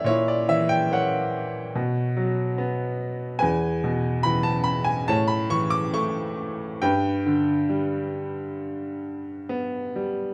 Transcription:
<<
  \new Staff \with { instrumentName = "Upright piano" } { \time 4/4 \key g \lydian \tempo 4 = 71 << { cis''16 d''16 e''16 g''16 fis''2~ fis''8 r8 | gis''4 b''16 a''16 b''16 gis''16 a''16 b''16 cis'''16 d'''16 cis'''4 | g''2. r4 | } \\ { e'4 cis''2~ cis''8 r8 | b'2 cis''2 | b'2. r4 | } >> }
  \new Staff \with { instrumentName = "Upright piano" } { \clef bass \time 4/4 \key g \lydian ais,8 e8 ais4 b,8 fis8 b4 | e,8 b,8 e4 a,8 e8 a4 | g,8 d8 g2 b8 g8 | }
>>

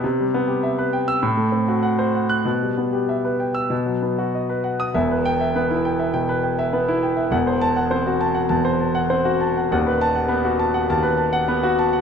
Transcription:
<<
  \new Staff \with { instrumentName = "Grand piano" } { \time 4/4 \key e \minor \tempo 4 = 101 << { r4. r16 e'''16 r4. r16 fis'''16 | r4. r16 e'''16 r4. r16 dis'''16 | r8 g''8 r2. | r8 a''8 r2. |
r8 a''8 r2. | } \\ { r1 | r1 | e''16 b'8 e''16 b'16 e'16 g''16 e''16 g''16 b'16 g''16 e''16 b'16 e'16 g''16 e''16 | fis''16 c''8 fis''16 c''16 fis'16 a''16 fis''16 a''16 c''16 a''16 fis''16 c''16 fis'16 a''16 fis''16 |
fis''16 b'8 fis''16 b'16 fis'16 a''16 fis''16 a''16 b'16 a''16 fis''16 b'16 fis'16 a''16 fis''16 | } >> }
  \new Staff \with { instrumentName = "Grand piano" } { \time 4/4 \key e \minor c16 g16 b16 g'16 e''16 b'16 g''8 a,16 a16 c'16 fis'16 fis''16 c''16 fis''8 | b,16 g16 b16 g'16 e''16 b'16 g''8 b,16 fis16 b16 fis'16 dis''16 b'16 fis''8 | <e,, e,>4 b8 r8 b,8 r8 b8 r8 | <e,, e,>4 c'8 r8 e,4 c'8 r8 |
<dis,, dis,>4 b8 r8 dis,4 b8 r8 | }
>>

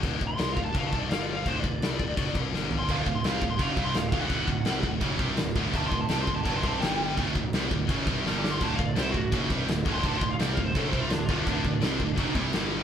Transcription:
<<
  \new Staff \with { instrumentName = "Lead electric guitar" } { \time 4/4 \tempo 4 = 168 \tuplet 3/2 { r4 c'''8~ c'''8 f''8 a''8 f''8 a''8 d''8 f''8 d''8 f''8 } | \tuplet 3/2 { c''8 d''4~ } d''4. r8 \tuplet 3/2 { r4 c'''8 } | \tuplet 3/2 { f''8 f''8 c'''8 f''8 f''8 c'''8 f''8 f''8 c'''8 f''8 f''8 fis''8~ } | fis''4. r2 r8 |
\tuplet 3/2 { a''8 c'''8 a''8 a''8 c'''8 a''8 a''8 c'''8 a''8 } g''4 | r2. \tuplet 3/2 { r8 d'''8 c'''8 } | \tuplet 3/2 { a''8 f''8 d''8 c''8 fis'8. r16 } r4 \tuplet 3/2 { r4 c'''8 } | \tuplet 3/2 { a''8 c'''8 f''8 d''8 f''8 c''8 a'8 c''8 f'8 d'8 f'8 d'8~ } |
d'2~ d'8 r4. | }
  \new Staff \with { instrumentName = "Distorted electric guitar" } { \clef bass \time 4/4 <d, a, d>8 <d, a,>8 <c g c'>8 <d, a,>8 <fis, cis fis>8 <c g c'>8 <g, d g>4 | <d, a, d>8 <d, a,>8 <c g c'>8 <d, a,>8 <fis, cis fis>8 <c g c'>8 <g, d g>4 | <d, a, d>8 <d, a,>8 <c g c'>8 <d, a,>8 <fis, cis fis>8 <c g c'>8 <d, a,>8 <d, a, d>8 | <d, a, d>8 <d, a,>8 <c g c'>8 <d, a,>8 <fis, cis fis>8 <c g c'>8 <d, a,>8 <d, a, d>8 |
<d, a, d>8 <d, a,>8 <c g c'>8 <d, a,>8 <fis, cis fis>8 <c g c'>8 <g, d g>4 | <d, a, d>8 <d, a,>8 <c g c'>8 <d, a,>8 <fis, cis fis>8 <c g c'>8 <g, d g>4 | <d, a, d>8 <d, a,>8 <c g c'>8 <d, a,>8 <fis, cis fis>8 <c g c'>8 <d, a,>8 <d, a, d>8 | <d, a, d>8 <d, a,>8 <c g c'>8 <d, a,>8 <fis, cis fis>8 <c g c'>8 <d, a,>8 <a, d>8 |
<d, a, d>8 <d, a,>8 <c g c'>8 <d, a,>8 <fis, cis fis>8 <c g c'>8 <g, d g>4 | }
  \new Staff \with { instrumentName = "Distorted electric guitar" } { \clef bass \time 4/4 r1 | r1 | <d, a, d>8 <d, a,>8 <c g c'>8 <d, a,>8 <fis, cis fis>8 <c g c'>8 <d, a,>8 <d, a, d>8 | <d, a, d>8 <d, a,>8 <c g c'>8 <d, a,>8 <fis, cis fis>8 <c g c'>8 <d, a,>8 <d, a, d>8 |
<d, a, d>8 <d, a,>8 <c g c'>8 <d, a,>8 <fis, cis fis>8 <c g c'>8 <g, d g>4 | <d, a, d>8 <d, a,>8 <c g c'>8 <d, a,>8 <fis, cis fis>8 <c g c'>8 <g, d g>4 | <d, a, d>8 <d, a,>8 <c g c'>8 <d, a,>8 <fis, cis fis>8 <c g c'>8 <d, a,>8 <d, a, d>8 | <d, a, d>8 <d, a,>8 <c g c'>8 <d, a,>8 <fis, cis fis>8 <c g c'>8 <d, a,>8 <d, a, d>8 |
<d, a, d>8 <d, a,>8 <c g c'>8 <d, a,>8 <fis, cis fis>8 <c g c'>8 <g, d g>4 | }
  \new Staff \with { instrumentName = "Picked electric bass" } { \clef bass \time 4/4 d,,8 d,,8 c,8 d,,8 fis,,8 c,8 g,,4 | d,,8 d,,8 c,8 d,,8 fis,,8 c,8 g,,4 | d,,8 d,,8 c,8 d,,8 fis,,8 c,8 d,,8 d,,8 | d,,8 d,,8 c,8 d,,8 fis,,8 c,8 d,,8 d,,8 |
d,,8 d,,8 c,8 d,,8 fis,,8 c,8 g,,4 | d,,8 d,,8 c,8 d,,8 fis,,8 c,8 g,,4 | d,,8 d,,8 c,8 d,,8 fis,,8 c,8 d,,8 d,,8 | d,,8 d,,8 c,8 d,,8 fis,,8 c,8 d,,8 d,,8 |
d,,8 d,,8 c,8 d,,8 fis,,8 c,8 g,,4 | }
  \new DrumStaff \with { instrumentName = "Drums" } \drummode { \time 4/4 <cymc bd>8 bd8 <cymc sn>8 bd8 <cymc bd>8 bd8 <cymc sn>4 | <cymc bd>8 bd8 <cymc sn>8 bd8 <cymc bd>8 bd8 sn8 tomfh8 | <cymc bd>8 bd8 <cymc sn>8 bd8 <cymc bd>8 bd8 <cymc sn>8 bd8 | <cymc bd>8 bd8 <cymc sn>8 bd8 <cymc bd>8 bd8 <cymc sn>8 bd8 |
<cymc bd>8 bd8 <cymc sn>8 bd8 <cymc bd>8 bd8 <cymc sn>4 | <cymc bd>8 bd8 <cymc sn>8 bd8 <cymc bd>8 bd8 sn8 sn8 | <cymc bd>8 bd8 <cymc sn>8 bd8 <cymc bd>8 bd8 <cymc sn>8 bd8 | <cymc bd>8 bd8 <cymc sn>8 bd8 <cymc bd>8 bd8 <cymc sn>8 bd8 |
<cymc bd>8 bd8 <cymc sn>8 bd8 <cymc bd>8 bd8 <cymc sn>4 | }
>>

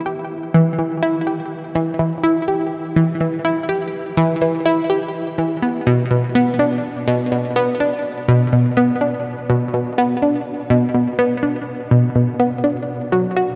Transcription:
\new Staff \with { instrumentName = "Synth arpeggio sound" } { \time 4/4 \key b \minor \tempo 4 = 124 g'8 r8 e8 e8 e'8 g'8 r8 e8 | e8 e'8 g'8 r8 e8 e8 e'8 g'8 | r8 e8 e8 e'8 g'8 r8 e8 b8 | b,8 b,8 b8 d'8 r8 b,8 b,8 b8 |
d'8 r8 b,8 b,8 b8 d'8 r8 b,8 | b,8 b8 d'8 r8 b,8 b,8 b8 d'8 | r8 b,8 b,8 b8 d'8 r8 fis8 fis'8 | }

